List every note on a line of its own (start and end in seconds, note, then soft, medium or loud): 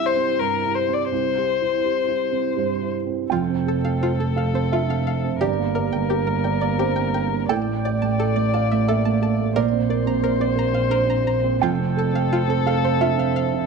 0.00 1.06 C2 medium
0.00 0.65 E4 soft
0.00 1.14 G4 soft
0.05 0.41 C5 medium
0.17 0.54 C4 soft
0.40 0.77 G2 soft
0.40 0.76 A#4 medium
0.65 1.02 E4 soft
0.75 0.95 C5 medium
0.88 1.26 C4 soft
0.94 1.10 D5 medium
1.11 3.27 C2 soft
1.11 2.90 C5 medium
1.38 1.75 G4 soft
1.62 1.99 E4 soft
1.85 2.23 G4 soft
2.08 2.47 E4 soft
2.32 2.71 C4 soft
2.57 2.96 G2 soft
2.57 3.28 C5 medium
2.82 3.22 E4 soft
3.07 3.31 C4 soft
3.30 5.43 F1 medium
3.30 5.37 F2 soft
3.30 3.42 F4 medium
3.30 5.37 A4 soft
3.30 4.32 G5 medium
3.50 3.78 C4 soft
3.66 3.95 A4 soft
3.66 3.78 A4 medium
3.85 4.13 C4 soft
3.85 3.95 F5 medium
4.01 4.13 F4 medium
4.01 4.29 C5 soft
4.19 4.47 C4 soft
4.19 4.30 A4 medium
4.36 4.64 A4 soft
4.36 4.69 F5 medium
4.36 4.48 F5 medium
4.54 4.82 C4 soft
4.54 4.65 C5 medium
4.72 4.89 D4 soft
4.72 4.83 F4 medium
4.72 5.37 E5 medium
4.89 5.17 C4 soft
4.89 5.00 F5 medium
5.06 5.34 C5 soft
5.06 5.17 F5 medium
5.24 5.41 C4 soft
5.41 7.52 G1 medium
5.41 7.47 G2 medium
5.41 5.51 G4 medium
5.41 7.46 A#4 medium
5.41 5.74 D5 medium
5.59 5.87 A#3 soft
5.75 5.86 A#4 medium
5.75 6.03 D5 soft
5.93 6.21 A#3 soft
5.93 6.03 G5 medium
6.09 6.20 G4 medium
6.09 6.37 A#4 soft
6.26 6.54 A#3 soft
6.26 6.37 A#4 medium
6.44 6.72 D5 soft
6.44 6.55 G5 medium
6.61 6.90 A#3 soft
6.61 6.72 D5 medium
6.78 6.97 C4 soft
6.78 6.90 G4 medium
6.78 7.46 C5 medium
6.96 7.25 A#3 soft
6.96 7.07 G5 medium
7.14 7.43 A#4 soft
7.14 7.25 G5 medium
7.32 7.50 A#3 soft
7.49 9.57 A1 medium
7.49 9.52 A2 medium
7.49 7.60 A4 medium
7.49 9.52 D5 medium
7.49 8.50 G5 medium
7.67 7.95 A3 soft
7.85 7.95 D5 medium
7.85 8.13 D5 soft
8.02 8.30 A3 soft
8.02 8.12 A5 medium
8.20 8.30 A4 medium
8.20 8.47 A4 soft
8.36 8.64 A3 soft
8.36 8.47 D5 medium
8.54 8.81 D5 soft
8.54 8.86 F5 medium
8.54 8.64 A5 medium
8.72 8.99 A3 soft
8.72 8.82 E5 medium
8.88 9.06 A#3 soft
8.88 8.99 A4 medium
8.88 9.52 E5 medium
9.05 9.33 A3 soft
9.05 9.16 A5 medium
9.22 9.49 A4 soft
9.22 9.33 A5 medium
9.41 9.57 A3 soft
9.55 11.64 A#1 medium
9.55 11.59 A#2 medium
9.55 9.66 A#4 loud
9.55 11.59 C5 medium
9.55 10.88 D5 medium
9.73 10.00 C4 soft
9.89 10.17 A#4 medium
9.89 10.00 D5 medium
10.06 10.34 C4 soft
10.06 10.17 A#5 medium
10.22 10.34 A#4 medium
10.22 10.50 C5 medium
10.40 10.68 C4 soft
10.40 10.51 D5 medium
10.56 10.84 A#4 soft
10.56 10.69 A#5 medium
10.73 11.02 C4 soft
10.73 10.85 F5 medium
10.90 11.08 D4 soft
10.90 11.02 A#4 medium
10.90 11.23 C5 medium
11.07 11.37 C4 soft
11.07 11.20 A#5 medium
11.25 11.55 C5 medium
11.25 11.38 A#5 medium
11.44 11.62 C4 soft
11.61 13.66 F1 medium
11.61 13.65 F2 medium
11.61 11.73 F4 medium
11.61 13.66 A4 medium
11.61 12.62 G5 medium
11.79 12.08 C4 medium
11.97 12.25 A4 medium
11.97 12.09 A4 medium
12.13 12.42 C4 soft
12.13 12.26 F5 medium
12.30 12.43 F4 medium
12.30 12.59 C5 medium
12.48 12.76 C4 medium
12.48 12.60 A4 medium
12.66 12.94 A4 medium
12.66 12.98 F5 medium
12.66 12.77 F5 medium
12.84 13.11 C4 medium
12.84 12.95 C5 medium
13.01 13.18 D4 soft
13.01 13.11 F4 medium
13.01 13.66 E5 loud
13.18 13.46 C4 medium
13.18 13.29 F5 medium
13.35 13.63 C5 medium
13.35 13.46 F5 medium
13.54 13.66 C4 medium